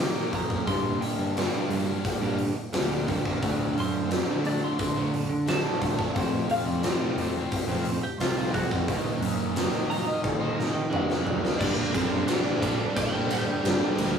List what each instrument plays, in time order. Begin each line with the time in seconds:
Already playing: picked electric bass D#3, distorted electric guitar D#3, clean electric guitar D5
0.00 distorted electric guitar F#3 A#3 D#4
0.15 distorted electric guitar F#3 A#3 D#4
0.31 picked electric bass D#2, distorted electric guitar D#3 F#3 A#3 D#4, kick, open hi-hat
0.35 clean electric guitar A#5
0.48 picked electric bass F#2, distorted electric guitar F#3 A#3 D#4, kick
0.66 distorted electric guitar G2 D3 G3 A#3 D4, picked electric bass G2, clean electric guitar C6, kick, open hi-hat
1.01 distorted electric guitar D3 G3 A#3 D4, clean electric guitar G5, open hi-hat
1.18 picked electric bass G2
1.35 distorted electric guitar G2 D3 G3 A#3 D4, snare, open hi-hat
1.52 distorted electric guitar G3 A#3 D4
1.69 picked electric bass G2, distorted electric guitar D3 G3 A#3 D4, open hi-hat
1.87 distorted electric guitar A#3 D4, muted overdriven electric guitar stroke
1.91 distorted electric guitar G3
2.05 kick, open hi-hat
2.21 picked electric bass G2, distorted electric guitar G3 A#3 D4
2.38 overdriven electric guitar D3 G3 A#3 D4, muted distorted electric guitar stroke, open hi-hat
2.57 muted overdriven electric guitar stroke
2.73 picked electric bass D2, distorted electric guitar G2 D3 G3 A#3 D4, snare, open hi-hat
2.90 distorted electric guitar G3 A#3 D4
3.06 distorted electric guitar D3 G3 A#3 D4, kick, open hi-hat
3.24 picked electric bass A1, distorted electric guitar G3 A#3 D4, kick
3.41 picked electric bass D2, distorted electric guitar D3 F#3 A3 D4, kick, open hi-hat
3.75 picked electric bass F#2, distorted electric guitar D3 F#3 A3 D4, open hi-hat
3.80 clean electric guitar C5
4.08 distorted electric guitar D3 F#3 A3 D4, snare, open hi-hat
4.26 picked electric bass D3, distorted electric guitar F#3 A3 D4
4.43 distorted electric guitar D3 F#3 A3 D4, open hi-hat
4.47 clean electric guitar D5
4.61 distorted electric guitar F#3 A3 D4, clean electric guitar C6, muted overdriven electric guitar stroke
4.79 picked electric bass D3, kick, open hi-hat
4.95 distorted electric guitar F#3 A3 D4
5.12 overdriven electric guitar D3 F#3 A3, muted distorted electric guitar stroke, open hi-hat
5.16 overdriven electric guitar D4
5.29 picked electric bass D3, muted overdriven electric guitar stroke
5.46 distorted electric guitar D3 F#3 A3 D4, clean electric guitar A5, snare, open hi-hat
5.64 distorted electric guitar F#3 A3 D4
5.80 picked electric bass C2, distorted electric guitar D3 F#3 A3 D4, kick, open hi-hat
5.98 distorted electric guitar F#3 A3 D4, kick
6.15 distorted electric guitar F2 C3 F3 A3 C4, picked electric bass F2, kick, open hi-hat
6.49 distorted electric guitar C3 F3 A3 C4, clean electric guitar F5, open hi-hat
6.65 picked electric bass F2, clean electric guitar D5
6.82 distorted electric guitar F2 C3 F3 A3 C4, snare, open hi-hat
6.99 distorted electric guitar F3 A3 C4
7.16 picked electric bass F2, distorted electric guitar C3 F3 A3 C4, open hi-hat
7.34 distorted electric guitar F3 A3 C4, muted overdriven electric guitar stroke
7.52 kick, open hi-hat
7.68 picked electric bass F2, distorted electric guitar A3 C4
7.72 distorted electric guitar F3
7.85 overdriven electric guitar C3 F3 A3, muted distorted electric guitar stroke, open hi-hat
7.89 overdriven electric guitar C4
8.03 clean electric guitar G4, muted overdriven electric guitar stroke
8.18 picked electric bass C2, distorted electric guitar F2 C3 F3, clean electric guitar F4, snare, open hi-hat
8.22 distorted electric guitar A3 C4
8.37 distorted electric guitar F3 A3 C4
8.54 distorted electric guitar C3 F3 A3 C4, clean electric guitar F#4, kick, open hi-hat
8.70 picked electric bass F2, distorted electric guitar F3 A3 C4, kick
8.88 picked electric bass D#2, distorted electric guitar D#3 F#3 A#3 D#4, kick, open hi-hat
9.21 picked electric bass F#2, distorted electric guitar D#3 F#3, open hi-hat
9.25 distorted electric guitar A#3 D#4
9.55 distorted electric guitar D#3 F#3 A#3 D#4, snare, open hi-hat
9.72 picked electric bass D#3, distorted electric guitar A#3 D#4
9.77 distorted electric guitar F#3
9.90 distorted electric guitar D#3 F#3 A#3 D#4, clean electric guitar A#5, open hi-hat
10.06 distorted electric guitar F#3 A#3 D#4, clean electric guitar D#5, muted overdriven electric guitar stroke
10.22 picked electric bass D#3, clean electric guitar D5, kick, high tom
10.40 distorted electric guitar F#3 A#3 D#4, clean electric guitar C5
10.54 overdriven electric guitar D#3 F#3, clean electric guitar A#4
10.58 overdriven electric guitar A#3 D#4, muted distorted electric guitar stroke, snare
10.72 picked electric bass D#3, clean electric guitar D#4, muted overdriven electric guitar stroke
10.90 distorted electric guitar D#3 F#3 A#3, clean electric guitar D4, mid tom
10.95 distorted electric guitar D#4
11.09 distorted electric guitar F#3 A#3 D#4, snare
11.22 picked electric bass F#2, distorted electric guitar D#3, clean electric guitar D4
11.27 distorted electric guitar F#3 A#3 D#4, floor tom
11.43 distorted electric guitar F#3 A#3 D#4, snare
11.58 distorted electric guitar G2 D3 G3, picked electric bass G2, clean electric guitar D4 D5, string machine G4 A#4 D5 A#5, kick, crash
11.62 distorted electric guitar A#3 D4
11.75 overdriven electric guitar G3 A#3 D4
11.94 picked electric bass F#2, distorted electric guitar D3 G3 A#3 D4, clean electric guitar C4 C5, kick, ride
12.10 overdriven electric guitar G3 A#3 D4
12.26 distorted electric guitar G2 D3 G3 A#3 D4, clean electric guitar D4 D5, snare, ride
12.61 distorted electric guitar G2 D3 G3 A#3 D4, picked electric bass A#2, kick, ride
12.77 overdriven electric guitar G3 A#3 D4, muted distorted electric guitar stroke
12.96 picked electric bass A#2, clean electric guitar G4 G5, kick, ride
13.12 distorted electric guitar G3 A#3 D4
13.28 distorted electric guitar D3 G3 A#3 D4, clean electric guitar G4 G5, ride
13.46 overdriven electric guitar G3 A#3 D4, muted distorted electric guitar stroke
13.64 picked electric bass G2, distorted electric guitar G2 D3 G3 A#3, snare, ride
13.68 distorted electric guitar D4
13.98 picked electric bass D2, distorted electric guitar D3 G3 A#3 D4, ride
14.14 overdriven electric guitar A#3, distorted electric guitar D4